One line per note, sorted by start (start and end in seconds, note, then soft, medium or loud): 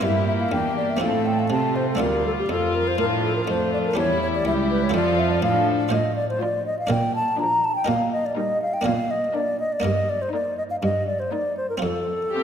0.00 0.48 G2 soft
0.00 0.51 G2 soft
0.00 0.96 A#3 soft
0.00 1.02 A#3 soft
0.00 0.97 E4 soft
0.00 0.53 E4 soft
0.00 0.51 G4 soft
0.00 0.98 A#4 soft
0.00 0.27 E5 soft
0.28 0.33 E5 medium
0.40 0.51 F5 medium
0.52 0.97 E2 soft
0.52 1.01 E2 soft
0.52 1.02 D4 soft
0.52 1.01 G4 soft
0.52 0.76 G5 medium
0.77 0.91 D5 medium
0.90 1.01 E5 soft
0.97 1.94 A3 soft
0.97 1.96 C4 soft
0.97 1.97 F4 soft
1.01 1.47 A2 soft
1.01 1.50 A2 medium
1.01 1.98 A3 soft
1.01 1.51 C4 soft
1.01 1.51 A4 soft
1.01 1.28 F5 medium
1.26 1.41 G5 medium
1.39 1.51 F5 medium
1.50 1.96 C3 soft
1.50 2.01 C3 soft
1.50 2.00 C4 soft
1.50 1.99 F4 soft
1.50 1.77 A5 medium
1.76 1.88 C5 medium
1.90 2.03 A4 medium
1.95 3.90 A3 soft
1.95 3.91 D4 soft
1.95 3.92 F4 soft
2.00 2.45 D2 soft
2.00 2.49 D2 soft
2.00 2.50 G3 soft
2.00 2.97 F4 soft
2.00 3.97 F4 soft
2.00 2.26 A#4 medium
2.26 2.32 A4 medium
2.39 2.52 G4 medium
2.49 2.95 F2 soft
2.49 2.98 F2 soft
2.49 2.97 F3 soft
2.49 2.77 A4 medium
2.75 2.89 A#4 medium
2.88 2.99 C5 medium
2.98 3.44 A2 soft
2.98 3.47 A2 medium
2.98 3.47 F3 soft
2.98 3.47 D4 soft
2.98 3.05 A#4 medium
3.24 3.35 A4 medium
3.36 3.41 A#4 medium
3.47 3.93 F2 soft
3.47 3.96 F2 soft
3.47 3.97 A3 soft
3.47 3.96 D4 soft
3.47 3.72 C5 medium
3.73 3.79 D5 medium
3.85 3.97 A#4 medium
3.94 4.41 E2 soft
3.94 4.45 E2 soft
3.94 4.94 G3 soft
3.94 4.90 C#4 soft
3.94 4.45 E4 soft
3.94 4.44 E4 soft
3.94 4.91 G4 soft
3.98 4.21 C#5 medium
4.22 4.27 C#5 medium
4.35 4.46 D5 medium
4.45 4.90 C#2 soft
4.45 4.94 C#2 medium
4.45 4.93 E4 soft
4.45 4.94 G4 medium
4.45 4.53 E5 medium
4.71 4.84 B4 medium
4.83 4.94 C#5 medium
4.90 5.87 F4 soft
4.90 5.87 A4 soft
4.94 5.39 F2 soft
4.94 5.43 F2 medium
4.94 5.42 F3 medium
4.94 5.44 F4 medium
4.94 5.42 A4 soft
4.94 5.21 D5 medium
5.19 5.33 E5 medium
5.31 5.42 D5 medium
5.43 5.88 A2 soft
5.43 5.91 A2 medium
5.43 5.91 F3 soft
5.43 5.92 D4 soft
5.43 5.91 A4 soft
5.43 5.67 F5 medium
5.89 6.30 A2 soft
5.89 6.31 A2 medium
5.89 6.86 F4 soft
5.89 6.86 C5 soft
5.89 6.15 D#5 medium
6.16 6.28 D5 medium
6.29 6.43 C5 medium
6.40 6.77 F3 medium
6.40 6.78 F4 soft
6.40 6.77 C5 medium
6.40 6.66 D5 medium
6.66 6.78 D#5 medium
6.79 6.93 F5 medium
6.87 7.28 A#2 soft
6.87 7.29 A#2 medium
6.87 7.83 D4 soft
6.87 7.84 A#4 soft
6.91 7.15 G5 medium
7.16 7.39 A5 medium
7.39 7.75 F3 soft
7.39 7.75 D4 medium
7.39 7.75 A#4 soft
7.39 7.66 A#5 medium
7.64 7.75 A5 medium
7.76 7.90 G5 medium
7.85 8.26 A#2 soft
7.85 8.27 A#2 medium
7.85 8.81 D#4 soft
7.85 8.82 A#4 soft
7.85 8.12 F5 medium
8.12 8.27 D#5 medium
8.26 8.36 D5 medium
8.37 8.74 G3 medium
8.37 8.73 D#4 soft
8.37 8.73 A#4 medium
8.37 8.61 D#5 medium
8.62 8.75 F5 medium
8.74 8.87 G5 medium
8.81 9.79 A#3 soft
8.81 9.80 D4 soft
8.81 9.80 A#4 soft
8.85 9.24 A#2 soft
8.85 9.25 A#2 medium
8.85 9.12 F5 medium
9.11 9.36 D#5 medium
9.34 9.72 A#3 soft
9.34 9.71 D4 soft
9.34 9.71 A#4 soft
9.34 9.59 D5 medium
9.60 9.74 D#5 medium
9.72 9.85 D5 medium
9.80 11.77 A#3 soft
9.80 11.77 D#4 soft
9.80 11.78 A#4 soft
9.80 10.11 D#5 medium
9.85 10.22 G2 soft
9.85 10.23 G2 medium
10.09 10.23 D5 medium
10.22 10.33 C5 medium
10.33 10.70 A#3 medium
10.33 10.70 D#4 soft
10.33 10.70 A#4 medium
10.33 10.57 D5 medium
10.58 10.63 D#5 medium
10.70 10.76 F5 medium
10.83 11.21 G2 soft
10.83 11.22 G2 medium
10.83 11.06 D#5 medium
11.07 11.21 D5 medium
11.20 11.33 C5 medium
11.32 11.70 A#3 soft
11.32 11.70 D#4 soft
11.32 11.70 A#4 soft
11.32 11.57 D5 medium
11.57 11.69 C5 medium
11.70 11.76 A#4 medium
11.78 12.43 C4 soft
11.78 12.43 F4 soft
11.82 12.22 F2 soft
11.82 12.23 F2 soft
11.82 12.43 A4 medium
12.33 12.43 C4 soft
12.33 12.43 F4 soft
12.33 12.43 G4 medium